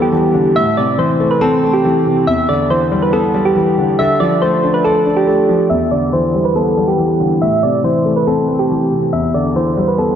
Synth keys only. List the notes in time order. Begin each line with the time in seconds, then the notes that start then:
0.02 G4
0.56 E5
0.77 D5
0.99 C5
1.31 B4
1.42 A4
1.73 G4
2.27 E5
2.49 D5
2.70 C5
3.02 B4
3.13 A4
3.45 G4
3.99 E5
4.20 D5
4.42 C5
4.74 B4
4.84 A4
5.17 G4
5.70 E5
5.91 D5
6.13 C5
6.45 B4
6.56 A4
6.88 G4
7.42 E5
7.63 D5
7.84 C5
8.16 B4
8.27 A4
8.59 G4
9.13 E5
9.34 D5
9.56 C5
9.88 B4
9.99 A4